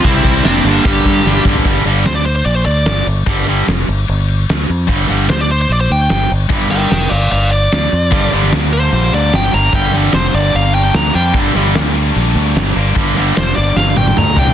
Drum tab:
CC |x-x-x-x-x-x-----|x-x-x-x-x-x-x-x-|x-x-x-x-x-x-x-x-|x-x-x-x-x-x-x-x-|
SD |----o-------o---|----o-------o---|----o-------o---|--o-o-------o---|
T1 |----------------|----------------|----------------|----------------|
T2 |----------------|----------------|----------------|----------------|
FT |---------------o|----------------|----------------|----------------|
BD |o-o-----o-o---o-|o---------------|o---------------|o---------------|

CC |x-x-x-x-x-x-x-x-|x-x-x-x-x-x-x-x-|x-x-x-x-x-x-x-x-|x-x-x-x-x-x-x-x-|
SD |----o-------o---|---oo-------o---|--ooo-------o---|--ooo-------o---|
T1 |----------------|----------------|----------------|----------------|
T2 |----------------|----------------|----------------|----------------|
FT |----------------|----------------|----------------|----------------|
BD |o---------------|o---------------|o---------------|o---------------|

CC |x-x-x-x---------|
SD |--o-o---o-------|
T1 |----------oo----|
T2 |------------o---|
FT |--------------oo|
BD |o---------------|